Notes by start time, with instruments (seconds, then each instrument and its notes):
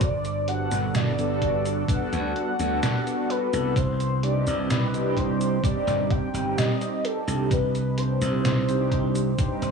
Already playing: slap bass G1
0.01 soft synth lead D5, kick, closed hi-hat, cabasa
0.25 closed hi-hat, cabasa
0.47 analog polysynth G3 B3 D4 F#4 A4, soft synth lead F#5, closed hi-hat
0.72 slap bass G1, snare, closed hi-hat, cabasa
0.95 soft synth lead D5, snare, closed hi-hat, cabasa
1.17 analog polysynth G3 B3 D4 F#4 A4, closed hi-hat, cabasa
1.42 soft synth lead D5, kick, closed hi-hat
1.66 closed hi-hat, cabasa
1.87 analog polysynth G3 B3 D4 F#4 A4, soft synth lead F#5, kick, closed hi-hat, cabasa
2.13 slap bass D2, closed hi-hat, cabasa
2.36 closed hi-hat
2.58 slap bass D2, analog polysynth G3 B3 D4 F#4 A4, closed hi-hat, cabasa
2.83 snare, closed hi-hat, cabasa
3.07 closed hi-hat, cabasa
3.29 soft synth lead B4, closed hi-hat
3.52 slap bass C2, analog polysynth G3 B3 D4 F#4 A4, closed hi-hat, cabasa
3.76 soft synth lead C5, kick, closed hi-hat, cabasa
4.00 closed hi-hat, cabasa
4.22 analog polysynth G3 C4 D4 D#4 G4, soft synth lead D5, closed hi-hat
4.47 slap bass C2, closed hi-hat, cabasa
4.71 soft synth lead B4, snare, closed hi-hat, cabasa
4.92 analog polysynth G3 C4 D4 D#4 G4, closed hi-hat, cabasa
5.17 soft synth lead C5, kick, closed hi-hat
5.41 closed hi-hat, cabasa
5.62 analog polysynth G3 C4 D4 D#4 G4, soft synth lead D5, kick, closed hi-hat, cabasa
5.87 slap bass G1, snare, closed hi-hat, cabasa
6.10 soft synth lead G5, kick, closed hi-hat
6.33 slap bass G1, analog polysynth G3 C4 D#4 G4, closed hi-hat, cabasa
6.57 soft synth lead D#5, snare, closed hi-hat, cabasa
6.81 closed hi-hat, cabasa
7.04 soft synth lead A4, closed hi-hat
7.27 slap bass C2, analog polysynth G3 C4 D4 D#4 G4, closed hi-hat, cabasa
7.51 soft synth lead B4, kick, closed hi-hat, cabasa
7.75 closed hi-hat, cabasa
7.97 analog polysynth G3 C4 D4 D#4 G4, soft synth lead C5, closed hi-hat
8.21 slap bass C2, snare, closed hi-hat, cabasa
8.45 snare, closed hi-hat, cabasa
8.68 analog polysynth G3 C4 D4 D#4 G4, closed hi-hat, cabasa
8.92 kick, closed hi-hat
9.15 closed hi-hat, cabasa
9.38 analog polysynth G3 C4 D4 D#4 G4, soft synth lead C5, kick, closed hi-hat, cabasa
9.62 slap bass G1, closed hi-hat, cabasa